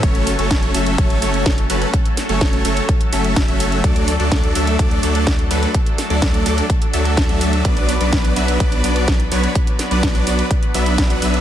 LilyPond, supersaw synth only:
\new Staff \with { instrumentName = "Supersaw synth" } { \time 4/4 \key fis \minor \tempo 4 = 126 <fis a cis' a' cis''>8 r16 <fis a cis' a' cis''>8. <fis a cis' a' e''>8 <fis a cis' a' cis''>8 <fis a cis' a' cis''>8 r8 <fis a cis' a' b'>8 | r8. <fis a cis' a' cis''>8. <fis a cis' a' cis''>8 r8 <fis a cis' a' e''>8. <fis a cis' a' e''>8. | <fis a d' a' d''>8 r16 <fis a d' a' d''>8. <fis a d' a' e''>8 <fis a d' a' d''>8 <fis a d' a' d''>8 r8 <fis a d' a' b'>8 | r8. <fis a d' a' d''>8. <fis a d' a' d''>8 r8 <fis a d' a' e''>8. <fis a d' a' e''>8. |
<fis b d' b' d''>8 r16 <fis b d' b' d''>8. <fis b d' b' e''>8 <fis b d' b' d''>8 <fis b d' b' d''>8 r8 <fis b d' b' cis''>8 | r8. <fis b d' b' d''>8. <fis b d' b' d''>8 r8 <fis b d' b' e''>8. <fis b d' b' fis''>16 <fis b d' b' e''>8 | }